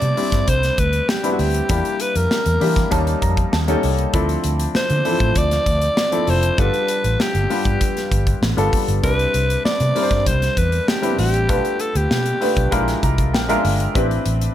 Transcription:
Already playing: grand piano G3 C4 D4 E4, alto saxophone D5
0.02 fingered electric bass C3, closed hi-hat
0.17 grand piano G3 C4 D4 E4, open hi-hat
0.32 fingered electric bass G2, kick, snare, closed hi-hat
0.48 fingered electric bass C2, alto saxophone C5, kick, closed hi-hat
0.63 snare, closed hi-hat
0.78 fingered electric bass D2, alto saxophone B4, kick, closed hi-hat
0.93 closed hi-hat
1.09 alto saxophone G4, snare
1.23 grand piano G3 B3 C4 D4 E4, closed hi-hat
1.33 alto saxophone F#4
1.39 fingered electric bass D2, alto saxophone G4, open hi-hat
1.54 closed hi-hat
1.69 fingered electric bass E2, grand piano G3 A#3 D4 E4 G4, kick, closed hi-hat
1.85 closed hi-hat
2.00 alto saxophone B4, closed hi-hat
2.15 fingered electric bass F2, alto saxophone A#4, closed hi-hat
2.31 snare
2.46 fingered electric bass E2, closed hi-hat
2.60 fingered electric bass E3, grand piano G3 A#3 D4 E4 G4, open hi-hat
2.76 kick, snare, closed hi-hat
2.91 fingered electric bass D#2, grand piano G3 A#3 C#4 D#4 A5, kick, closed hi-hat
3.07 closed hi-hat
3.22 fingered electric bass F2, grand piano A#5, kick, closed hi-hat
3.37 kick, closed hi-hat
3.53 fingered electric bass D#2, grand piano A5, snare
3.68 grand piano G3 A#3 C#4 D#4 A4 G5, closed hi-hat
3.83 fingered electric bass C2, grand piano D#5, open hi-hat
3.99 closed hi-hat
4.13 fingered electric bass D2, grand piano F3 C4 D4 E4 A4, kick, closed hi-hat
4.29 closed hi-hat
4.44 fingered electric bass D2, closed hi-hat
4.60 closed hi-hat
4.75 alto saxophone C5, muted fingered electric bass stroke, snare
4.90 fingered electric bass D3, closed hi-hat
5.05 grand piano E3 C4 D4 E4 A4, open hi-hat
5.11 grand piano F3
5.20 fingered electric bass A2, kick, closed hi-hat
5.35 fingered electric bass D2, alto saxophone D5, kick, closed hi-hat
5.51 snare, closed hi-hat
5.66 fingered electric bass D2, kick, closed hi-hat
5.82 closed hi-hat
5.97 snare
6.12 grand piano F3 C4 D4 E4 A4, closed hi-hat
6.27 fingered electric bass F1, alto saxophone C5, open hi-hat
6.43 closed hi-hat
6.58 fingered electric bass G1, grand piano G3 B3 D4 F4 A4, alto saxophone B4, kick, closed hi-hat
6.74 closed hi-hat
6.88 closed hi-hat
7.04 fingered electric bass A1, closed hi-hat
7.20 alto saxophone G4, snare
7.35 fingered electric bass G1, closed hi-hat
7.50 grand piano G3 B3 D4 F4 B4, open hi-hat
7.65 fingered electric bass G2, kick, closed hi-hat
7.81 kick, closed hi-hat
7.97 snare, closed hi-hat
8.11 fingered electric bass G1, kick, closed hi-hat
8.27 kick, closed hi-hat
8.42 fingered electric bass A1, snare
8.57 fingered electric bass G1, grand piano G3 B3 D4 F4 A4, closed hi-hat
8.73 kick, open hi-hat
8.88 fingered electric bass G1, closed hi-hat
9.03 fingered electric bass C2, grand piano G3 C4 D4 E4 B4, alto saxophone B4, kick, closed hi-hat
9.19 closed hi-hat
9.34 fingered electric bass C2, closed hi-hat
9.50 closed hi-hat
9.65 alto saxophone D5, muted fingered electric bass stroke, snare
9.80 fingered electric bass C3, closed hi-hat
9.95 grand piano G3 C4 D4 E4 A#4, open hi-hat
10.03 grand piano C5
10.11 fingered electric bass G2, kick, snare, closed hi-hat
10.26 fingered electric bass C2, alto saxophone C5, kick, closed hi-hat
10.42 snare, closed hi-hat
10.57 fingered electric bass E2, alto saxophone B4, kick, closed hi-hat
10.72 closed hi-hat
10.88 alto saxophone G4, snare
11.02 grand piano G3 C4 D4 E4 B4, closed hi-hat
11.19 fingered electric bass A1, alto saxophone G4, open hi-hat
11.34 closed hi-hat
11.49 fingered electric bass B1, grand piano A3 B3 D4 F4 B4, kick, closed hi-hat
11.65 closed hi-hat
11.80 alto saxophone A4, closed hi-hat
11.95 fingered electric bass D2, alto saxophone G4, closed hi-hat
12.11 fingered electric bass B2, snare
12.26 closed hi-hat
12.41 grand piano A3 B3 D4 F4 B4, open hi-hat
12.57 fingered electric bass B1, kick, closed hi-hat
12.71 fingered electric bass A#1, grand piano G#3 D4 E4 F4 A#4, kick, closed hi-hat
12.88 snare, closed hi-hat
13.03 fingered electric bass C2, grand piano A#5, kick, closed hi-hat
13.18 kick, closed hi-hat
13.34 fingered electric bass A#1, grand piano G5, snare
13.49 grand piano G#3 D4 F4 A#4 E5 F5, closed hi-hat
13.64 fingered electric bass G1, open hi-hat
13.80 closed hi-hat
13.95 fingered electric bass A1, grand piano C4 D4 E4 G4 B4, kick, closed hi-hat
14.11 closed hi-hat
14.26 fingered electric bass A1, closed hi-hat
14.41 closed hi-hat

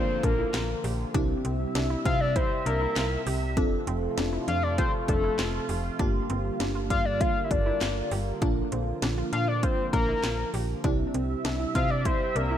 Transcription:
Already playing: analog synth pad D3 F3 A#3 F4, fm electric piano A#3 D4 F4, synth pluck F4, analog synth lead C5, downlifter
0.23 fm bass A#1, synth pluck D4, analog synth lead A#4, kick, closed hi-hat
0.39 synth pluck E4
0.54 fm bass A#1, synth pluck F4, snare, clap, closed hi-hat
0.84 fm bass A#1, synth pluck G4, open hi-hat
1.14 fm bass C2, analog synth pad C3 G3 E5, fm electric piano C4 E4 G4, synth pluck D4, kick, closed hi-hat
1.45 fm bass C2, synth pluck C4, closed hi-hat
1.75 fm bass C2, synth pluck D4, snare, closed hi-hat
1.90 synth pluck E4
2.05 fm bass C3, synth pluck C4, analog synth lead F5, kick, closed hi-hat
2.21 analog synth lead D5
2.36 synth pluck E4, analog synth lead C5, kick, closed hi-hat
2.66 fm bass C2, synth pluck D4, analog synth lead A#4, closed hi-hat
2.81 synth pluck E4
2.96 fm bass C2, synth pluck F4, snare, clap, closed hi-hat
3.27 fm bass C2, synth pluck G4, open hi-hat
3.57 fm bass F1, analog synth pad F3 A3 F4, fm electric piano C4 F4 A4, synth pluck D4, kick, closed hi-hat
3.87 fm bass F1, synth pluck C4, closed hi-hat
4.18 fm bass F1, synth pluck D4, snare, closed hi-hat
4.33 synth pluck E4
4.48 fm bass F2, synth pluck D4, analog synth lead F5, closed hi-hat
4.63 analog synth lead D5
4.78 synth pluck F4, analog synth lead C5, kick, closed hi-hat
5.08 fm bass F1, synth pluck D4, analog synth lead A4, kick, closed hi-hat
5.24 synth pluck E4
5.39 fm bass F1, synth pluck F4, snare, clap, closed hi-hat
5.69 fm bass F1, synth pluck G4, open hi-hat
5.99 fm bass G1, analog synth pad D3 G3 A#3, fm electric piano A#3 F4 G4, synth pluck D4, kick, closed hi-hat
6.30 fm bass G1, synth pluck C4, closed hi-hat
6.60 fm bass G1, synth pluck D4, snare, closed hi-hat
6.75 synth pluck F4
6.90 fm bass G2, synth pluck D4, analog synth lead F5, kick, closed hi-hat
7.05 analog synth lead D5
7.20 synth pluck F4, analog synth lead F5, kick, closed hi-hat
7.44 analog synth lead E5
7.50 fm bass G1, synth pluck D4, analog synth lead D5, kick, closed hi-hat
7.66 synth pluck E4
7.81 fm bass G1, synth pluck F4, snare, clap, closed hi-hat
8.11 fm bass G1, synth pluck G4, open hi-hat
8.42 fm bass A#1, analog synth pad F3, fm electric piano A#3 D4 F4, synth pluck D4, kick, closed hi-hat
8.72 fm bass A#1, synth pluck C4, closed hi-hat
9.02 fm bass A#1, synth pluck D4, snare, closed hi-hat
9.18 synth pluck F4
9.32 fm bass A#2, synth pluck D4, analog synth lead F5, closed hi-hat
9.48 analog synth lead D5
9.63 synth pluck F4, analog synth lead C5, kick, closed hi-hat
9.93 fm bass A#1, synth pluck D4, analog synth lead A#4, kick, closed hi-hat
10.08 synth pluck E4
10.23 fm bass A#1, synth pluck F4, snare, clap, closed hi-hat
10.54 fm bass A#1, synth pluck G4, open hi-hat
10.84 fm bass C2, analog synth pad C3 G3 E5, fm electric piano C4 E4 G4, synth pluck D4, kick, closed hi-hat
11.14 fm bass C2, synth pluck C4, closed hi-hat
11.45 fm bass C2, synth pluck D4, snare, closed hi-hat
11.60 synth pluck E4
11.75 fm bass C3, synth pluck C4, analog synth lead F5, kick, closed hi-hat
11.90 analog synth lead D5
12.05 synth pluck E4, analog synth lead C5, kick, closed hi-hat
12.35 fm bass C2, synth pluck D4, analog synth lead A#4, closed hi-hat
12.51 synth pluck E4

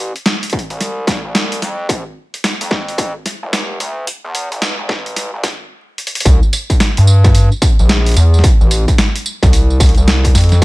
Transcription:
Already playing: analog synth bass A1
0.16 closed hi-hat
0.26 snare, closed hi-hat
0.43 closed hi-hat
0.50 kick, closed hi-hat
0.59 closed hi-hat
0.70 analog synth bass C2, closed hi-hat
0.81 snare, closed hi-hat
1.07 analog synth bass C2, kick, snare, closed hi-hat
1.25 analog synth bass C2
1.35 snare, closed hi-hat
1.52 closed hi-hat
1.62 analog synth bass F2, snare, closed hi-hat
1.89 analog synth bass A#1, kick, closed hi-hat
2.34 closed hi-hat
2.44 snare, closed hi-hat
2.61 analog synth bass F2, closed hi-hat
2.71 kick, snare
2.88 closed hi-hat
2.98 kick, closed hi-hat
3.26 snare, closed hi-hat
3.43 analog synth bass F1
3.53 snare, closed hi-hat
3.80 analog synth bass D2, closed hi-hat
4.07 closed hi-hat
4.24 analog synth bass E2
4.35 closed hi-hat
4.52 analog synth bass A1, closed hi-hat
4.62 snare, closed hi-hat
4.79 analog synth bass A1
4.89 kick, snare
5.06 closed hi-hat
5.16 snare, closed hi-hat
5.34 analog synth bass A1
5.43 kick, snare, closed hi-hat
5.98 closed hi-hat
6.07 closed hi-hat
6.15 closed hi-hat
6.20 closed hi-hat
6.25 analog synth bass C2, kick, closed hi-hat, tambourine
6.43 tambourine
6.53 closed hi-hat, tambourine
6.70 kick, closed hi-hat, tambourine
6.80 snare, closed hi-hat, tambourine
6.97 analog synth bass G2, closed hi-hat, tambourine
7.07 tambourine
7.24 kick, snare, closed hi-hat, tambourine
7.35 closed hi-hat, tambourine
7.52 tambourine
7.62 kick, snare, closed hi-hat, tambourine
7.79 analog synth bass A#1, tambourine
7.89 snare, closed hi-hat, tambourine
8.06 closed hi-hat, tambourine
8.09 closed hi-hat
8.12 closed hi-hat
8.14 closed hi-hat
8.17 analog synth bass E2, closed hi-hat, tambourine
8.34 tambourine
8.39 snare
8.44 kick, closed hi-hat, tambourine
8.61 analog synth bass A1, tambourine
8.71 closed hi-hat, tambourine
8.88 kick, closed hi-hat, tambourine
8.98 snare, closed hi-hat, tambourine
9.16 closed hi-hat, tambourine
9.26 tambourine
9.43 analog synth bass C2, kick, snare, closed hi-hat, tambourine
9.53 closed hi-hat, tambourine
9.70 tambourine
9.80 analog synth bass C2, kick, closed hi-hat, tambourine
9.83 closed hi-hat
9.86 closed hi-hat
9.89 closed hi-hat
9.94 analog synth bass C2, closed hi-hat, tambourine
10.08 snare, closed hi-hat, tambourine
10.24 kick, closed hi-hat, tambourine
10.35 analog synth bass F2, snare, closed hi-hat, tambourine
10.38 closed hi-hat
10.41 closed hi-hat
10.44 closed hi-hat
10.49 snare, closed hi-hat, tambourine

